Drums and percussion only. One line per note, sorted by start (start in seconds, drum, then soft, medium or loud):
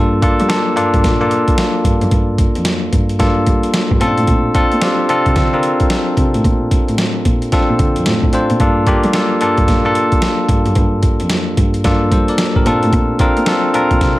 0.22 kick loud
0.22 closed hi-hat medium
0.40 closed hi-hat soft
0.50 snare loud
0.50 closed hi-hat medium
0.77 closed hi-hat medium
0.94 kick medium
0.94 closed hi-hat soft
1.04 kick medium
1.04 snare medium
1.04 closed hi-hat medium
1.31 closed hi-hat medium
1.48 kick medium
1.48 closed hi-hat medium
1.58 snare loud
1.58 closed hi-hat medium
1.84 kick medium
1.84 closed hi-hat medium
2.01 closed hi-hat medium
2.11 kick loud
2.11 closed hi-hat medium
2.38 kick loud
2.38 closed hi-hat medium
2.55 closed hi-hat medium
2.65 snare loud
2.65 closed hi-hat medium
2.93 kick medium
2.93 closed hi-hat medium
3.09 closed hi-hat soft
3.20 kick medium
3.20 snare medium
3.20 closed hi-hat medium
3.46 kick medium
3.46 closed hi-hat medium
3.63 closed hi-hat soft
3.74 snare loud
3.74 closed hi-hat medium
3.91 kick medium
4.01 closed hi-hat medium
4.17 closed hi-hat medium
4.27 kick medium
4.27 closed hi-hat medium
4.54 kick medium
4.54 closed hi-hat medium
4.72 closed hi-hat soft
4.82 snare loud
4.82 closed hi-hat medium
5.09 closed hi-hat medium
5.26 kick medium
5.26 closed hi-hat soft
5.36 kick medium
5.36 snare medium
5.36 closed hi-hat medium
5.63 closed hi-hat medium
5.80 kick medium
5.80 closed hi-hat medium
5.90 snare loud
5.90 closed hi-hat medium
6.17 kick medium
6.17 closed hi-hat medium
6.34 closed hi-hat soft
6.44 kick loud
6.44 closed hi-hat medium
6.71 kick loud
6.71 closed hi-hat medium
6.88 closed hi-hat soft
6.98 snare loud
6.98 closed hi-hat medium
7.25 kick medium
7.25 closed hi-hat medium
7.42 closed hi-hat soft
7.52 kick medium
7.52 snare medium
7.52 closed hi-hat medium
7.79 kick medium
7.79 closed hi-hat medium
7.96 closed hi-hat medium
8.06 snare loud
8.06 closed hi-hat medium
8.23 kick medium
8.33 closed hi-hat medium
8.50 closed hi-hat medium
8.60 kick loud
8.60 closed hi-hat medium
8.87 kick loud
8.87 closed hi-hat medium
9.03 closed hi-hat soft
9.13 snare loud
9.13 closed hi-hat medium
9.41 closed hi-hat medium
9.57 kick medium
9.57 closed hi-hat soft
9.68 kick medium
9.68 snare medium
9.68 closed hi-hat medium
9.95 closed hi-hat medium
10.12 kick medium
10.12 closed hi-hat medium
10.22 snare loud
10.22 closed hi-hat medium
10.49 kick loud
10.49 closed hi-hat medium
10.66 closed hi-hat soft
10.75 kick loud
10.75 closed hi-hat medium
11.03 kick medium
11.03 closed hi-hat medium
11.20 closed hi-hat soft
11.30 snare loud
11.30 closed hi-hat medium
11.57 kick medium
11.57 closed hi-hat medium
11.74 closed hi-hat soft
11.84 kick medium
11.84 snare medium
11.84 closed hi-hat medium
12.12 kick medium
12.12 closed hi-hat medium
12.28 closed hi-hat soft
12.38 snare loud
12.38 closed hi-hat medium
12.56 kick medium
12.66 closed hi-hat medium
12.83 closed hi-hat soft
12.93 kick loud
12.93 closed hi-hat medium
13.19 kick loud
13.19 closed hi-hat medium
13.37 closed hi-hat soft
13.46 snare loud
13.46 closed hi-hat medium
13.74 closed hi-hat medium
13.91 kick medium
13.91 closed hi-hat soft
14.01 kick medium
14.01 snare medium
14.01 closed hi-hat medium